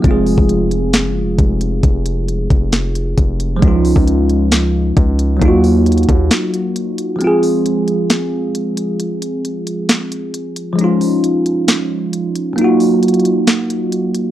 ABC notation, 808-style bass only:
X:1
M:4/4
L:1/16
Q:1/4=134
K:Fphr
V:1 name="808-style bass" clef=bass
F,,,3 F,,,6 G,,,3/2 F,,,3/2 F,,,4 | F,,,6 F,,,6 F,,,4 | D,,3 D,,8- D,, D,,4 | E,,6 E,,2 z8 |
z16 | z16 | z16 | z16 |]